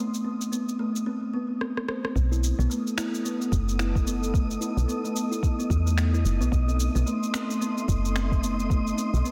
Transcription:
0.00 0.23 A3 medium
0.00 1.06 A3 medium
0.00 1.07 D#4 medium
0.00 1.06 F#5 medium
0.00 1.07 C6 medium
0.00 1.07 D#6 medium
0.14 shaker soft
0.25 0.40 C4 medium
0.41 shaker medium
0.52 0.67 B3 medium
0.52 shaker soft
0.69 shaker soft
0.79 0.94 A3 medium
0.96 shaker medium
1.06 1.21 C4 medium
1.34 1.48 B3 medium
1.61 1.75 C4 medium
1.61 cross-stick medium
1.77 cross-stick medium
1.88 2.04 C5 medium
1.88 cross-stick medium
2.04 2.15 C4 medium
2.04 cross-stick medium
2.16 2.52 B1 loud
2.16 9.31 D#4 medium
2.16 9.31 D#6 medium
2.16 kick loud
2.16 shaker soft
2.32 2.42 E4 medium
2.32 shaker soft
2.44 shaker medium
2.53 6.52 B3 loud
2.59 2.67 B1 loud
2.59 2.70 B3 loud
2.59 7.51 A4 medium
2.59 shaker soft
2.70 2.96 A3 medium
2.70 shaker soft
2.87 shaker soft
2.97 3.06 E4 loud
2.97 finger snap medium
2.97 shaker medium
3.14 shaker soft
3.25 3.40 B3 medium
3.25 shaker soft
3.42 shaker soft
3.52 4.57 F#1 loud
3.52 3.67 A3 medium
3.52 kick loud
3.52 shaker medium
3.69 shaker soft
3.79 3.94 E4 medium
3.79 finger snap medium
3.79 shaker soft
3.95 kick loud
3.95 shaker soft
4.06 4.22 B3 medium
4.06 shaker medium
4.23 shaker soft
4.34 4.49 A3 medium
4.34 kick loud
4.34 shaker soft
4.51 shaker soft
4.61 4.76 E4 medium
4.61 shaker medium
4.77 4.85 B1 loud
4.77 shaker soft
4.88 5.03 B3 medium
4.88 shaker soft
5.04 5.15 A3 medium
5.04 shaker soft
5.16 shaker medium
5.31 5.57 E4 medium
5.31 shaker soft
5.43 kick loud
5.43 shaker soft
5.59 5.65 B3 medium
5.59 shaker soft
5.70 6.24 E2 medium
5.70 kick loud
5.70 shaker medium
5.86 6.12 A3 medium
5.86 shaker soft
5.98 finger snap medium
5.98 shaker soft
6.13 6.39 E4 medium
6.13 shaker soft
6.25 6.42 F#1 medium
6.25 shaker medium
6.41 6.49 B1 medium
6.41 6.52 B3 loud
6.41 shaker soft
6.52 6.89 B1 loud
6.52 kick loud
6.52 shaker soft
6.67 9.31 A3 medium
6.67 6.79 C4 medium
6.67 shaker soft
6.80 shaker medium
6.95 7.04 B1 loud
6.95 7.06 B3 loud
6.95 9.31 C6 medium
6.95 shaker soft
7.06 7.33 A3 loud
7.06 shaker soft
7.23 shaker soft
7.34 7.43 C4 loud
7.34 finger snap medium
7.34 shaker medium
7.51 shaker soft
7.61 7.76 B3 medium
7.61 shaker soft
7.78 shaker soft
7.88 8.93 F#1 loud
7.88 8.04 A3 medium
7.88 kick loud
7.88 shaker medium
8.05 shaker soft
8.16 8.31 C4 medium
8.16 finger snap medium
8.16 shaker soft
8.32 kick loud
8.32 shaker soft
8.43 8.58 B3 medium
8.43 shaker medium
8.60 shaker soft
8.70 8.85 A3 medium
8.70 kick loud
8.70 shaker soft
8.87 shaker soft
8.97 9.13 C4 medium
8.97 shaker medium
9.14 9.22 B1 loud
9.14 shaker soft
9.24 9.31 B3 medium
9.24 shaker soft

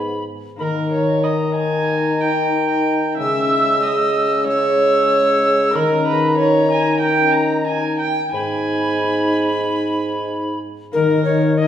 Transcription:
0.00 0.28 G#2 medium
0.00 0.63 G#2 medium
0.00 0.61 G#3 soft
0.00 0.27 B3 medium
0.00 0.57 D#4 soft
0.00 0.62 B4 soft
0.00 0.25 B5 medium
0.56 3.19 A#3 soft
0.56 3.20 D#4 soft
0.56 1.21 D#4 medium
0.56 3.21 A#4 soft
0.56 0.90 A#4 medium
0.56 0.64 B5 soft
0.60 3.21 D#3 soft
0.60 3.15 D#3 medium
0.60 1.20 A#5 medium
0.92 1.25 C#5 medium
1.23 3.15 D#4 medium
1.23 1.55 D#5 medium
1.23 3.14 A#5 medium
1.23 1.28 B5 medium
1.55 2.22 G#5 medium
2.21 3.17 G5 medium
3.15 4.44 G#3 medium
3.15 4.42 C#4 soft
3.15 4.44 E4 soft
3.15 4.45 G#4 soft
3.15 3.81 E5 medium
3.15 4.44 E6 medium
3.19 5.78 C#3 soft
3.19 5.78 C#3 medium
3.83 4.46 D#5 medium
4.44 5.72 G#3 medium
4.44 5.70 C#4 soft
4.44 5.77 E4 soft
4.44 5.72 G#4 soft
4.44 5.73 C#5 medium
4.48 5.77 E6 medium
5.71 8.04 D#3 medium
5.71 6.98 C#4 soft
5.71 7.01 D#4 soft
5.71 7.05 G#4 soft
5.71 6.06 A#4 medium
5.75 8.06 D#3 medium
5.75 6.38 D#4 medium
5.75 5.81 B5 medium
5.80 6.39 A#5 medium
6.07 6.38 B4 medium
6.38 7.02 D#4 medium
6.38 6.70 C#5 medium
6.38 7.01 A#5 medium
6.72 7.00 G#5 medium
7.00 8.34 C#4 soft
7.00 8.28 D#4 soft
7.00 7.35 G5 medium
7.00 8.02 A#5 medium
7.04 8.03 D#4 medium
7.34 7.67 A#5 medium
7.67 7.99 G#5 medium
8.00 8.32 G5 medium
8.28 10.97 G#2 soft
8.28 10.95 B3 soft
8.28 10.91 D#4 soft
8.28 10.58 D#4 medium
8.28 10.96 B4 soft
8.33 10.58 G#2 medium
8.33 10.25 G#5 medium
8.33 10.58 B5 medium
10.92 11.68 D#3 medium
10.92 11.68 G3 medium
10.92 11.68 A#3 medium
10.92 11.68 D#4 medium
10.92 11.56 D#4 medium
10.92 11.24 A#4 loud
10.92 11.56 A#4 medium
10.96 11.68 D#3 medium
11.25 11.59 C#5 medium
11.58 11.68 D#4 medium
11.58 11.68 A#4 medium
11.58 11.68 D#5 medium

